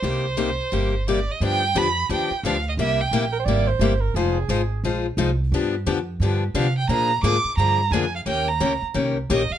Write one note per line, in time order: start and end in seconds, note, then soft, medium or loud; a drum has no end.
0.00 0.58 C2 medium
0.00 0.24 C3 medium
0.00 0.24 G3 medium
0.00 1.04 C5 medium
0.04 0.25 A#3 medium
0.04 0.25 D#4 medium
0.04 0.25 G4 medium
0.37 0.49 C3 medium
0.37 0.49 G3 medium
0.37 0.49 A#3 medium
0.37 0.49 D#4 medium
0.37 0.49 G4 medium
0.72 1.27 G1 medium
0.72 0.93 C3 medium
0.72 0.93 G3 medium
0.72 0.93 A#3 medium
0.72 0.93 D#4 medium
0.72 0.94 G4 medium
1.08 1.18 C3 medium
1.08 1.18 G3 medium
1.08 1.18 A#3 medium
1.08 1.19 D#4 medium
1.08 1.19 G4 medium
1.08 1.33 D5 medium
1.31 1.43 D#5 medium
1.40 1.74 G2 medium
1.40 1.62 D3 medium
1.40 1.62 F3 medium
1.40 1.62 B3 medium
1.40 1.62 D4 medium
1.40 1.63 G4 medium
1.40 1.79 G5 medium
1.75 2.08 F2 medium
1.75 1.86 D3 medium
1.75 1.86 F3 medium
1.75 1.86 B3 medium
1.75 1.87 D4 medium
1.75 1.87 G4 medium
1.75 2.11 B5 medium
2.09 2.29 D#2 medium
2.09 2.30 D3 medium
2.09 2.31 F3 medium
2.09 2.31 B3 medium
2.09 2.31 D4 medium
2.09 2.31 G4 medium
2.09 2.42 G5 medium
2.31 muted upright bass stroke soft
2.43 2.77 D2 medium
2.43 2.55 D3 medium
2.43 2.56 F3 medium
2.43 2.56 B3 medium
2.43 2.56 D4 medium
2.43 2.56 G4 medium
2.43 2.66 F5 medium
2.69 2.74 D#5 medium
2.77 3.11 C2 medium
2.77 2.99 C3 medium
2.77 2.99 G3 medium
2.77 2.99 A#3 medium
2.77 3.00 E4 medium
2.77 3.00 G4 medium
2.77 3.03 E5 medium
3.01 3.35 G5 medium
3.11 3.45 A#1 medium
3.11 3.24 C3 medium
3.11 3.24 G3 medium
3.11 3.24 A#3 medium
3.11 3.24 E4 medium
3.11 3.24 G4 medium
3.32 3.39 A#4 medium
3.40 3.47 C5 medium
3.45 3.79 G#1 medium
3.45 3.68 C3 medium
3.45 3.68 G3 medium
3.45 3.68 A#3 medium
3.45 3.68 E4 medium
3.45 3.69 G4 medium
3.45 3.69 D5 loud
3.67 4.02 C5 medium
3.79 4.13 G1 medium
3.79 3.92 C3 medium
3.79 3.92 G3 medium
3.79 3.92 A#3 medium
3.79 3.92 E4 medium
3.79 3.93 G4 medium
4.01 4.17 A#4 medium
4.14 4.48 F1 medium
4.14 4.37 F3 medium
4.14 4.37 G#3 medium
4.14 4.37 D#4 medium
4.14 4.37 F4 medium
4.14 4.84 G#4 medium
4.14 4.37 C5 medium
4.49 4.82 G#1 medium
4.49 4.60 F3 medium
4.49 4.61 G#3 medium
4.49 4.61 D#4 medium
4.49 4.61 F4 medium
4.49 4.61 C5 medium
4.84 5.16 A#1 medium
4.84 5.05 F3 medium
4.84 5.05 G#3 medium
4.84 5.05 D#4 medium
4.84 5.06 F4 medium
4.84 5.06 C5 medium
5.17 5.51 C2 medium
5.17 5.29 F3 medium
5.17 5.29 G#3 medium
5.17 5.29 D#4 medium
5.17 5.29 F4 medium
5.17 5.30 C5 medium
5.52 5.85 G2 medium
5.52 5.74 D3 medium
5.52 5.74 F3 medium
5.52 5.74 B3 medium
5.52 5.74 D4 medium
5.52 5.74 G4 medium
5.86 6.19 F2 medium
5.86 5.98 D3 medium
5.86 5.98 F3 medium
5.86 5.98 B3 medium
5.86 5.98 D4 medium
5.86 5.98 G4 medium
6.20 6.54 G2 medium
6.20 6.42 D3 medium
6.20 6.43 F3 medium
6.20 6.43 B3 medium
6.20 6.43 D4 medium
6.20 6.43 G4 medium
6.54 6.88 C3 medium
6.54 6.66 D3 medium
6.54 6.66 F3 medium
6.54 6.66 B3 medium
6.54 6.66 D4 medium
6.54 6.66 G4 medium
6.54 6.76 F5 medium
6.78 6.89 G5 medium
6.89 7.22 A#2 medium
6.89 7.10 D3 medium
6.89 7.11 F3 medium
6.89 7.11 A#3 medium
6.89 7.11 D4 medium
6.89 7.11 G#4 medium
6.89 7.22 A#5 loud
7.23 7.43 G#2 medium
7.23 7.35 D3 medium
7.23 7.35 F3 medium
7.23 7.35 A#3 medium
7.23 7.35 D4 medium
7.23 7.36 G#4 medium
7.23 7.56 D6 loud
7.44 muted upright bass stroke soft
7.57 7.90 G2 medium
7.57 7.79 D3 medium
7.57 7.80 F3 medium
7.57 7.80 A#3 medium
7.57 7.80 D4 medium
7.57 7.80 G#4 medium
7.57 7.93 A#5 medium
7.91 8.25 F2 medium
7.91 8.04 D3 medium
7.91 8.04 F3 medium
7.91 8.04 A#3 medium
7.91 8.04 D4 medium
7.91 8.04 G#4 medium
7.91 8.15 G#5 medium
8.15 8.21 F5 medium
8.26 8.60 D#2 medium
8.26 8.48 D#3 medium
8.26 8.47 A#3 medium
8.26 8.48 C#4 medium
8.26 8.48 G4 medium
8.26 8.48 A#4 medium
8.26 8.50 G5 medium
8.48 8.83 A#5 medium
8.60 8.81 C#2 medium
8.60 8.72 D#3 medium
8.60 8.72 A#3 medium
8.60 8.72 C#4 medium
8.60 8.72 G4 medium
8.60 8.72 A#4 medium
8.82 muted upright bass stroke soft
8.94 9.29 C2 medium
8.94 9.16 D#3 medium
8.94 9.16 A#3 medium
8.94 9.16 C#4 medium
8.94 9.16 G4 medium
8.94 9.17 A#4 medium
9.30 9.50 A#1 medium
9.30 9.41 D#3 medium
9.30 9.41 A#3 medium
9.30 9.41 C#4 medium
9.30 9.42 G4 medium
9.30 9.42 A#4 medium
9.30 9.54 D#5 medium
9.50 9.58 F5 medium
9.50 muted upright bass stroke soft